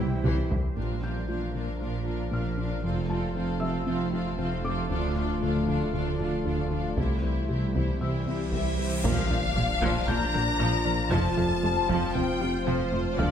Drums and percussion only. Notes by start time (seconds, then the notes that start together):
0.25 taiko mid
0.51 taiko low
0.76 taiko
4.90 taiko
6.97 taiko
7.75 taiko
8.52 taiko
9.04 taiko
9.30 taiko low
9.81 taiko
10.08 taiko low
11.12 taiko
11.37 taiko low
11.89 taiko
12.15 taiko low
13.18 taiko